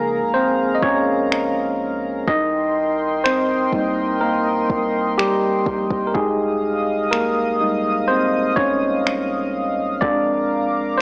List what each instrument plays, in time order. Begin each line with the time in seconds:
Already playing: 808-style bass C#3, tine electric piano F3 G#3 A#3 D#4 G#4 A#4, analog synth pad G#4 A#4 F5 A#5
0.22 808-style bass C#2
0.34 tine electric piano C4 C5
0.75 tine electric piano D#5
0.82 808-style bass C#2, tine electric piano C#4 C#5, kick
1.32 finger snap
2.28 808-style bass C2, tine electric piano D#4 D#5, analog synth pad A#4 D#5 G5 C6, kick
3.24 tine electric piano C4 C5, finger snap
3.73 808-style bass C2, tine electric piano G3 A#3 D#4, kick
4.21 tine electric piano A#3 A#4
4.70 808-style bass C2, kick
5.18 tine electric piano G3 G4, finger snap
5.66 808-style bass A#1, kick
5.90 808-style bass C2, kick
6.07 tine electric piano A#4
6.14 808-style bass C2, tine electric piano G#3 D#4 G4 G#4, analog synth pad D#5 F5 D#6, kick
7.11 tine electric piano A#3 A#4, finger snap
7.61 tine electric piano G3 G#3 D#4
8.08 tine electric piano C4 C5
8.56 808-style bass C2, tine electric piano C#4 C#5, kick
9.07 finger snap
10.01 808-style bass A#1, tine electric piano G#3 C4 D4 D5, analog synth pad A#4 A#5 D6, kick
10.98 tine electric piano C5